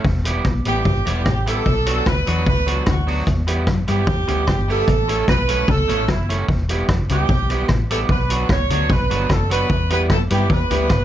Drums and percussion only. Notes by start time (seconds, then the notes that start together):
0.04 kick
0.25 closed hi-hat
0.45 kick, cross-stick
0.65 closed hi-hat
0.85 kick
1.07 closed hi-hat
1.26 kick, cross-stick
1.47 closed hi-hat
1.66 kick
1.86 closed hi-hat
2.06 kick, cross-stick
2.27 closed hi-hat
2.46 kick
2.68 closed hi-hat
2.86 kick, cross-stick
3.08 open hi-hat
3.27 kick, hi-hat pedal
3.48 closed hi-hat
3.67 kick, cross-stick
3.88 closed hi-hat
4.07 kick
4.28 closed hi-hat
4.47 kick, cross-stick
4.70 open hi-hat
4.88 kick, hi-hat pedal
5.09 closed hi-hat
5.28 kick, cross-stick
5.49 closed hi-hat
5.68 kick
5.89 closed hi-hat
6.08 kick, cross-stick
6.30 closed hi-hat
6.49 kick
6.69 closed hi-hat
6.89 kick, cross-stick
7.09 closed hi-hat
7.29 kick
7.50 closed hi-hat
7.68 kick, cross-stick
7.90 closed hi-hat
8.09 kick
8.30 closed hi-hat
8.49 kick, cross-stick
8.70 closed hi-hat
8.90 kick
9.11 closed hi-hat
9.29 kick, cross-stick
9.51 closed hi-hat
9.70 kick
9.90 closed hi-hat
10.10 kick, cross-stick
10.30 closed hi-hat
10.50 kick
10.71 closed hi-hat
10.89 kick, cross-stick